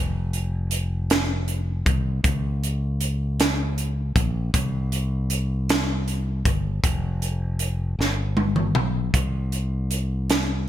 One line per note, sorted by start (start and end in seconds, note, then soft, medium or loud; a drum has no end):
0.00 1.82 F1 medium
0.33 closed hi-hat soft
0.71 closed hi-hat medium
1.10 snare loud
1.10 closed hi-hat medium
1.48 closed hi-hat soft
1.86 2.21 C2 medium
1.86 kick medium
1.86 closed hi-hat medium
2.24 4.11 C#2 medium
2.24 kick loud
2.24 closed hi-hat loud
2.64 closed hi-hat soft
3.01 closed hi-hat medium
3.40 snare medium
3.40 closed hi-hat medium
3.78 closed hi-hat soft
4.16 4.51 A#1 medium
4.16 kick medium
4.16 closed hi-hat medium
4.54 6.42 C2 medium
4.54 kick loud
4.54 closed hi-hat loud
4.92 closed hi-hat soft
5.30 closed hi-hat medium
5.69 snare loud
5.69 closed hi-hat medium
6.08 closed hi-hat soft
6.45 6.80 G1 medium
6.45 kick medium
6.45 closed hi-hat medium
6.84 7.95 F1 loud
6.84 kick loud
6.84 closed hi-hat loud
7.22 closed hi-hat soft
7.59 closed hi-hat medium
7.99 8.71 G1 loud
7.99 snare medium
8.37 high tom medium
8.56 mid tom medium
8.75 9.11 B1 medium
8.75 mid tom medium
9.14 10.69 C2 medium
9.14 kick medium
9.14 closed hi-hat medium
9.52 closed hi-hat soft
9.91 closed hi-hat medium
10.30 snare loud
10.30 closed hi-hat medium